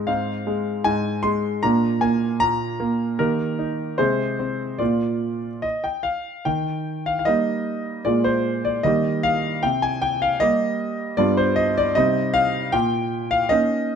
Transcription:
Already playing: G#2 C4 D#4 D#5
0.07 G#2 C4 D#4 F5
0.47 G#3
0.84 G#2 G#5
1.23 G#3 C6
1.63 A#2 A#3 D4 A#5
2.01 A#3 G#5
2.40 A#2 A#5
2.80 A#3
3.19 D#3 A#3 G4 A#4
3.59 D#4
3.98 C3 G#3 G#4 C5
4.39 C4
4.79 A#2 A#3 F4 D5
5.62 D#5
5.84 G5
6.03 F5
6.45 D#3 G5
7.06 F5
7.19 F5
7.25 G3 A#3 D#4 D#5
8.05 A#2 G#3 A#3 F4 D5
8.24 C5
8.65 D5
8.83 D#3 G3 A#3 G4 D#5
9.23 F5
9.63 C3 G5
9.82 G#5
10.02 G5
10.22 F5
10.40 G3 A#3 G4 D#5
11.17 G2 G3 B3 F4 D5
11.37 C5
11.56 D#5
11.78 D5
11.95 C3 G3 C4 D#4 D#5
12.34 F5
12.72 A#2 G5
13.31 F5
13.49 A#3 C#4 D#4 D#5

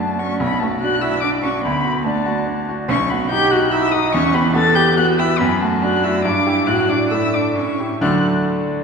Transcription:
Already playing: F#2 A3 D4 F#4 A5
0.19 C#4 F#4 C#6
0.40 B1 B3 B5
0.60 A3 F#4 A5
0.80 D4 F#4 F#6
1.01 E4 F#4 E6
1.21 D4 D6
1.43 C#4 F#4 C#6
1.62 D2 B3 B5
1.85 F#4
2.05 A3 D4 A5
2.26 F#4
2.47 D4
2.69 F#4
2.89 B1 C#4 C#6
3.09 B3 F#4 B5
3.30 D#4 G4 G6
3.50 F#4 F#6
3.71 D#4 E4 E6
3.92 D#4 F#4 D#6
4.12 E2 C#4 C#6
4.34 B3 G4 B5
4.55 B3 A4 A6
4.75 G4 G6
4.96 B3 F#4 F#6
5.19 E4 G4 E6
5.38 F#2 B3 B5
5.60 A3 F#4 A5
5.82 D4 F#4 F#6
6.04 E4 F#4 E6
6.25 G2 D4 D6
6.46 E4 G4
6.67 A2 F#4 F#6
6.88 D4 D6
7.11 A3 E4 E6
7.33 D4 D6
7.56 A2 C#4 C#6
7.80 E4 G4
8.01 D2 D3 F#3 A3 D4 A4 D5 F#6

